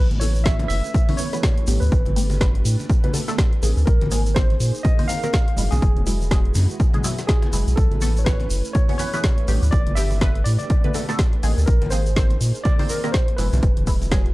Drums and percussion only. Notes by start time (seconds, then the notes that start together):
0.11 closed hi-hat, high conga, low conga
0.21 open hi-hat, muted conga, shaker
0.35 shaker
0.45 kick, snare, closed hi-hat, shaker
0.59 closed hi-hat, muted conga
0.70 open hi-hat, shaker
0.84 closed hi-hat, shaker
0.94 kick, closed hi-hat, shaker
1.09 open hi-hat, muted conga, high conga
1.18 open hi-hat, shaker
1.33 snare, closed hi-hat, shaker
1.43 kick, snare, closed hi-hat, muted conga, shaker
1.58 closed hi-hat
1.67 open hi-hat, low conga, shaker
1.81 low conga, shaker
1.92 kick, closed hi-hat, muted conga, shaker
2.06 closed hi-hat, high conga, low conga
2.16 open hi-hat, shaker
2.30 muted conga, shaker
2.41 kick, snare, closed hi-hat, shaker
2.55 closed hi-hat
2.65 open hi-hat, shaker
2.79 closed hi-hat, muted conga, shaker
2.90 kick, closed hi-hat, shaker
3.04 closed hi-hat, high conga
3.13 open hi-hat, muted conga, shaker
3.28 snare, shaker
3.38 kick, snare, closed hi-hat, shaker
3.53 closed hi-hat
3.63 open hi-hat, muted conga, shaker
3.77 shaker
3.87 kick, closed hi-hat, shaker
4.01 closed hi-hat, muted conga, high conga, low conga
4.11 open hi-hat, shaker
4.26 shaker
4.36 kick, snare, closed hi-hat, shaker
4.50 closed hi-hat, muted conga
4.60 open hi-hat, shaker
4.75 closed hi-hat, shaker
4.85 kick, closed hi-hat, muted conga, shaker
4.99 open hi-hat, high conga
5.09 open hi-hat, shaker
5.23 snare, closed hi-hat, shaker
5.33 kick, snare, closed hi-hat, muted conga, shaker
5.48 closed hi-hat
5.57 open hi-hat, low conga, shaker
5.72 muted conga, low conga, shaker
5.82 kick, closed hi-hat, shaker
5.96 closed hi-hat, high conga, low conga
6.07 open hi-hat, shaker
6.21 muted conga, shaker
6.31 kick, snare, closed hi-hat, shaker
6.45 closed hi-hat
6.55 open hi-hat, muted conga, shaker
6.70 closed hi-hat, shaker
6.80 kick, closed hi-hat, shaker
6.94 closed hi-hat, high conga
7.04 open hi-hat, muted conga, shaker
7.18 snare, closed hi-hat, shaker
7.28 kick, snare, closed hi-hat, shaker
7.42 closed hi-hat, muted conga
7.53 open hi-hat, shaker
7.67 shaker
7.77 kick, closed hi-hat, shaker
7.91 closed hi-hat, high conga, low conga
8.01 open hi-hat, muted conga, shaker
8.17 shaker
8.26 kick, snare, closed hi-hat, shaker
8.40 closed hi-hat, muted conga
8.50 open hi-hat, shaker
8.65 closed hi-hat, shaker
8.75 kick, closed hi-hat, shaker
8.89 open hi-hat, muted conga, high conga
8.99 open hi-hat, shaker
9.13 snare, closed hi-hat, shaker
9.24 kick, snare, closed hi-hat, muted conga, shaker
9.38 closed hi-hat
9.48 open hi-hat, low conga, shaker
9.63 low conga, shaker
9.72 kick, closed hi-hat, muted conga, shaker
9.87 closed hi-hat, high conga, low conga
9.97 open hi-hat, shaker
10.11 muted conga, shaker
10.21 kick, snare, closed hi-hat, shaker
10.35 closed hi-hat
10.46 open hi-hat, shaker
10.59 closed hi-hat, muted conga, shaker
10.70 kick, closed hi-hat, shaker
10.84 closed hi-hat, high conga
10.94 open hi-hat, muted conga, shaker
11.09 snare, closed hi-hat, shaker
11.19 kick, snare, closed hi-hat, shaker
11.33 closed hi-hat
11.43 open hi-hat, muted conga, shaker
11.58 shaker
11.67 kick, closed hi-hat, shaker
11.82 closed hi-hat, muted conga, high conga, low conga
11.91 open hi-hat, shaker
12.06 shaker
12.16 kick, snare, closed hi-hat, shaker
12.30 closed hi-hat, muted conga
12.41 open hi-hat, shaker
12.55 closed hi-hat, shaker
12.65 kick, closed hi-hat, muted conga, shaker
12.79 open hi-hat, high conga
12.89 open hi-hat, shaker
13.04 snare, closed hi-hat, shaker
13.14 kick, snare, closed hi-hat, muted conga, shaker
13.28 closed hi-hat
13.38 open hi-hat, low conga, shaker
13.52 muted conga, low conga, shaker
13.63 kick, closed hi-hat, shaker
13.77 closed hi-hat, high conga, low conga
13.87 kick, open hi-hat, shaker
14.02 muted conga, shaker
14.11 kick, snare, closed hi-hat, shaker
14.26 closed hi-hat